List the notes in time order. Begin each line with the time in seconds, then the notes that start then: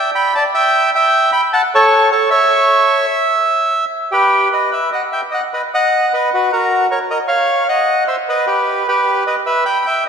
Already playing: E5 G5
0.15 G5 B5
0.35 D5 A5
0.54 E5 G5
0.95 E5 G5
1.32 G5 B5
1.53 F#5 A5
1.75 A4 C#5
2.12 A4 C#5
2.30 C#5 E5
4.12 G4 B4
4.52 B4 D#5
4.71 B4 E5
4.92 D#5 F#5
5.12 E5 G5
5.31 D#5 F#5
5.54 B4 D#5
5.74 D#5 F#5
6.14 B4 D#5
6.34 F#4 B4
6.53 F#4 A#4
6.91 A#4 C#5
7.10 A#4 D#5
7.28 C#5 F5
7.69 D#5 F#5
8.08 C5 E5
8.29 B4 D#5
8.47 G4 B4
8.88 G4 B4
9.27 B4 D#5
9.46 B4 E5
9.65 G5 B5
9.86 E5 G5